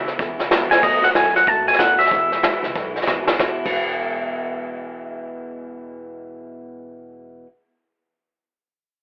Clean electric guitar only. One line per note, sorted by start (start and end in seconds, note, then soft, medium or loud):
0.00 0.15 E5 medium
0.71 0.83 G#5 loud
0.83 1.04 D#5 medium
1.04 1.09 F#5 loud
1.16 1.36 G#5 loud
1.36 1.48 F#5 loud
1.48 1.68 A5 loud
1.68 1.75 G#5 medium
1.77 2.00 F#5 loud
1.77 1.79 G#5 medium
1.99 3.07 E5 medium